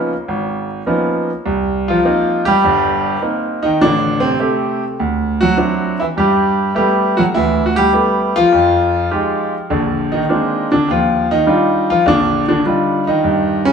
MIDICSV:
0, 0, Header, 1, 2, 480
1, 0, Start_track
1, 0, Key_signature, -3, "major"
1, 0, Tempo, 588813
1, 1189, Time_signature, 4, 2, 24, 8
1, 11189, End_track
2, 0, Start_track
2, 0, Title_t, "Grand piano"
2, 0, Program_c, 0, 0
2, 0, Note_on_c, 0, 49, 57
2, 0, Note_on_c, 0, 53, 56
2, 0, Note_on_c, 0, 58, 49
2, 0, Note_on_c, 0, 59, 51
2, 0, Note_on_c, 0, 61, 50
2, 0, Note_on_c, 0, 63, 61
2, 99, Note_off_c, 0, 53, 0
2, 100, Note_off_c, 0, 61, 0
2, 101, Note_off_c, 0, 59, 0
2, 102, Note_off_c, 0, 63, 0
2, 103, Note_off_c, 0, 58, 0
2, 231, Note_on_c, 0, 32, 66
2, 536, Note_off_c, 0, 49, 0
2, 649, Note_off_c, 0, 32, 0
2, 705, Note_on_c, 0, 58, 45
2, 707, Note_on_c, 0, 53, 57
2, 709, Note_on_c, 0, 59, 47
2, 709, Note_on_c, 0, 63, 57
2, 713, Note_on_c, 0, 61, 44
2, 1053, Note_off_c, 0, 58, 0
2, 1054, Note_off_c, 0, 53, 0
2, 1055, Note_off_c, 0, 59, 0
2, 1055, Note_off_c, 0, 63, 0
2, 1057, Note_off_c, 0, 61, 0
2, 1187, Note_on_c, 0, 36, 62
2, 1535, Note_on_c, 0, 65, 81
2, 1552, Note_on_c, 0, 53, 71
2, 1606, Note_off_c, 0, 36, 0
2, 1666, Note_on_c, 0, 58, 57
2, 1670, Note_on_c, 0, 60, 50
2, 1672, Note_on_c, 0, 63, 67
2, 1983, Note_off_c, 0, 53, 0
2, 2000, Note_on_c, 0, 67, 95
2, 2013, Note_off_c, 0, 58, 0
2, 2015, Note_off_c, 0, 60, 0
2, 2016, Note_off_c, 0, 63, 0
2, 2021, Note_off_c, 0, 65, 0
2, 2021, Note_on_c, 0, 55, 81
2, 2151, Note_on_c, 0, 43, 68
2, 2153, Note_on_c, 0, 31, 68
2, 2568, Note_off_c, 0, 43, 0
2, 2570, Note_off_c, 0, 31, 0
2, 2596, Note_off_c, 0, 67, 0
2, 2606, Note_off_c, 0, 55, 0
2, 2621, Note_on_c, 0, 58, 53
2, 2624, Note_on_c, 0, 63, 53
2, 2627, Note_on_c, 0, 60, 45
2, 2943, Note_off_c, 0, 63, 0
2, 2956, Note_on_c, 0, 63, 84
2, 2971, Note_off_c, 0, 58, 0
2, 2974, Note_off_c, 0, 60, 0
2, 2977, Note_on_c, 0, 51, 66
2, 3096, Note_off_c, 0, 63, 0
2, 3107, Note_off_c, 0, 51, 0
2, 3107, Note_on_c, 0, 33, 66
2, 3110, Note_on_c, 0, 62, 92
2, 3135, Note_on_c, 0, 50, 69
2, 3426, Note_on_c, 0, 60, 90
2, 3430, Note_off_c, 0, 50, 0
2, 3450, Note_off_c, 0, 62, 0
2, 3459, Note_on_c, 0, 48, 58
2, 3526, Note_off_c, 0, 33, 0
2, 3574, Note_off_c, 0, 60, 0
2, 3583, Note_on_c, 0, 57, 59
2, 3586, Note_on_c, 0, 60, 50
2, 3588, Note_on_c, 0, 67, 55
2, 3931, Note_off_c, 0, 57, 0
2, 3933, Note_off_c, 0, 60, 0
2, 3934, Note_off_c, 0, 67, 0
2, 4045, Note_off_c, 0, 48, 0
2, 4073, Note_on_c, 0, 38, 66
2, 4407, Note_on_c, 0, 66, 93
2, 4424, Note_on_c, 0, 54, 73
2, 4489, Note_off_c, 0, 38, 0
2, 4541, Note_off_c, 0, 66, 0
2, 4543, Note_on_c, 0, 62, 44
2, 4544, Note_on_c, 0, 64, 41
2, 4547, Note_on_c, 0, 60, 48
2, 4553, Note_on_c, 0, 66, 48
2, 4858, Note_off_c, 0, 54, 0
2, 4876, Note_off_c, 0, 64, 0
2, 4889, Note_on_c, 0, 64, 86
2, 4891, Note_off_c, 0, 62, 0
2, 4893, Note_off_c, 0, 60, 0
2, 4896, Note_off_c, 0, 66, 0
2, 4905, Note_on_c, 0, 52, 57
2, 4929, Note_off_c, 0, 64, 0
2, 4946, Note_off_c, 0, 52, 0
2, 5028, Note_on_c, 0, 43, 56
2, 5036, Note_on_c, 0, 67, 82
2, 5051, Note_on_c, 0, 55, 69
2, 5446, Note_off_c, 0, 43, 0
2, 5478, Note_off_c, 0, 67, 0
2, 5486, Note_off_c, 0, 55, 0
2, 5498, Note_on_c, 0, 57, 54
2, 5500, Note_on_c, 0, 59, 49
2, 5503, Note_on_c, 0, 64, 52
2, 5510, Note_on_c, 0, 67, 77
2, 5523, Note_on_c, 0, 55, 63
2, 5823, Note_off_c, 0, 55, 0
2, 5844, Note_on_c, 0, 66, 85
2, 5849, Note_off_c, 0, 57, 0
2, 5849, Note_off_c, 0, 59, 0
2, 5849, Note_off_c, 0, 67, 0
2, 5851, Note_off_c, 0, 64, 0
2, 5862, Note_on_c, 0, 54, 73
2, 5885, Note_off_c, 0, 66, 0
2, 5903, Note_off_c, 0, 54, 0
2, 5987, Note_on_c, 0, 64, 92
2, 5996, Note_on_c, 0, 38, 67
2, 6008, Note_on_c, 0, 52, 64
2, 6222, Note_off_c, 0, 64, 0
2, 6232, Note_off_c, 0, 52, 0
2, 6243, Note_on_c, 0, 66, 77
2, 6320, Note_off_c, 0, 66, 0
2, 6328, Note_on_c, 0, 67, 101
2, 6343, Note_on_c, 0, 55, 67
2, 6410, Note_off_c, 0, 38, 0
2, 6458, Note_off_c, 0, 67, 0
2, 6466, Note_on_c, 0, 57, 48
2, 6466, Note_on_c, 0, 59, 46
2, 6467, Note_on_c, 0, 64, 44
2, 6470, Note_on_c, 0, 67, 59
2, 6778, Note_off_c, 0, 55, 0
2, 6812, Note_off_c, 0, 57, 0
2, 6812, Note_off_c, 0, 59, 0
2, 6813, Note_off_c, 0, 64, 0
2, 6814, Note_off_c, 0, 67, 0
2, 6814, Note_on_c, 0, 65, 111
2, 6831, Note_on_c, 0, 53, 71
2, 6949, Note_on_c, 0, 41, 64
2, 7367, Note_off_c, 0, 41, 0
2, 7414, Note_off_c, 0, 65, 0
2, 7426, Note_on_c, 0, 65, 54
2, 7429, Note_on_c, 0, 56, 53
2, 7429, Note_on_c, 0, 63, 49
2, 7430, Note_on_c, 0, 67, 63
2, 7773, Note_off_c, 0, 65, 0
2, 7774, Note_off_c, 0, 56, 0
2, 7774, Note_off_c, 0, 63, 0
2, 7774, Note_off_c, 0, 67, 0
2, 7908, Note_on_c, 0, 50, 69
2, 7913, Note_on_c, 0, 34, 64
2, 8222, Note_off_c, 0, 53, 0
2, 8248, Note_on_c, 0, 63, 74
2, 8264, Note_on_c, 0, 51, 61
2, 8327, Note_off_c, 0, 50, 0
2, 8329, Note_off_c, 0, 34, 0
2, 8389, Note_on_c, 0, 56, 51
2, 8392, Note_on_c, 0, 58, 50
2, 8394, Note_on_c, 0, 62, 60
2, 8395, Note_on_c, 0, 60, 47
2, 8691, Note_off_c, 0, 63, 0
2, 8699, Note_off_c, 0, 51, 0
2, 8724, Note_off_c, 0, 62, 0
2, 8735, Note_off_c, 0, 56, 0
2, 8736, Note_off_c, 0, 58, 0
2, 8736, Note_on_c, 0, 62, 78
2, 8737, Note_off_c, 0, 60, 0
2, 8748, Note_on_c, 0, 50, 61
2, 8868, Note_on_c, 0, 39, 65
2, 8873, Note_off_c, 0, 50, 0
2, 8881, Note_off_c, 0, 62, 0
2, 8893, Note_on_c, 0, 65, 79
2, 8902, Note_on_c, 0, 53, 68
2, 9190, Note_off_c, 0, 65, 0
2, 9194, Note_off_c, 0, 53, 0
2, 9221, Note_on_c, 0, 63, 93
2, 9229, Note_on_c, 0, 51, 67
2, 9287, Note_off_c, 0, 39, 0
2, 9343, Note_off_c, 0, 63, 0
2, 9347, Note_on_c, 0, 55, 54
2, 9350, Note_on_c, 0, 62, 54
2, 9356, Note_on_c, 0, 63, 55
2, 9356, Note_on_c, 0, 65, 65
2, 9662, Note_off_c, 0, 51, 0
2, 9690, Note_off_c, 0, 65, 0
2, 9694, Note_off_c, 0, 55, 0
2, 9695, Note_off_c, 0, 62, 0
2, 9698, Note_off_c, 0, 63, 0
2, 9703, Note_on_c, 0, 65, 91
2, 9714, Note_on_c, 0, 53, 62
2, 9831, Note_off_c, 0, 65, 0
2, 9831, Note_on_c, 0, 34, 73
2, 9837, Note_off_c, 0, 53, 0
2, 9846, Note_on_c, 0, 62, 88
2, 9854, Note_on_c, 0, 50, 57
2, 10146, Note_off_c, 0, 62, 0
2, 10151, Note_off_c, 0, 50, 0
2, 10178, Note_on_c, 0, 62, 76
2, 10190, Note_on_c, 0, 50, 62
2, 10250, Note_off_c, 0, 34, 0
2, 10308, Note_off_c, 0, 62, 0
2, 10320, Note_on_c, 0, 62, 48
2, 10323, Note_on_c, 0, 55, 49
2, 10328, Note_on_c, 0, 63, 44
2, 10328, Note_on_c, 0, 65, 53
2, 10623, Note_off_c, 0, 50, 0
2, 10645, Note_off_c, 0, 63, 0
2, 10657, Note_on_c, 0, 63, 81
2, 10662, Note_off_c, 0, 62, 0
2, 10663, Note_off_c, 0, 55, 0
2, 10666, Note_off_c, 0, 65, 0
2, 10670, Note_on_c, 0, 51, 65
2, 10793, Note_on_c, 0, 43, 68
2, 11098, Note_off_c, 0, 63, 0
2, 11104, Note_off_c, 0, 51, 0
2, 11131, Note_on_c, 0, 61, 94
2, 11141, Note_on_c, 0, 49, 59
2, 11189, Note_off_c, 0, 43, 0
2, 11189, Note_off_c, 0, 49, 0
2, 11189, Note_off_c, 0, 61, 0
2, 11189, End_track
0, 0, End_of_file